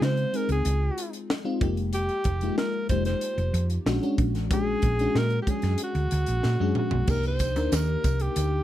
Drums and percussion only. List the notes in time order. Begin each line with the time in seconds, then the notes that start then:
0.02 snare
0.17 closed hi-hat
0.34 closed hi-hat
0.49 closed hi-hat
0.65 closed hi-hat
0.98 closed hi-hat
1.13 closed hi-hat
1.30 snare
1.61 kick, closed hi-hat
1.77 closed hi-hat
1.93 closed hi-hat
2.09 closed hi-hat
2.24 kick, closed hi-hat
2.41 closed hi-hat
2.58 snare
2.89 kick, closed hi-hat
3.05 snare, closed hi-hat
3.21 closed hi-hat
3.38 closed hi-hat
3.54 closed hi-hat
3.70 closed hi-hat
3.86 snare
4.03 closed hi-hat
4.18 kick, closed hi-hat
4.35 snare, closed hi-hat
4.51 kick, closed hi-hat
4.82 kick, closed hi-hat
4.99 closed hi-hat
5.16 snare
5.30 closed hi-hat
5.47 kick, closed hi-hat
5.62 snare, closed hi-hat
5.78 closed hi-hat
5.95 closed hi-hat
6.11 closed hi-hat
6.26 closed hi-hat
6.43 snare
6.75 mid tom
6.91 floor tom
7.07 kick, crash, tambourine
7.23 closed hi-hat
7.39 kick, closed hi-hat, tambourine
7.56 closed hi-hat
7.72 snare, closed hi-hat, tambourine
8.04 kick, closed hi-hat, tambourine
8.20 closed hi-hat
8.36 closed hi-hat, tambourine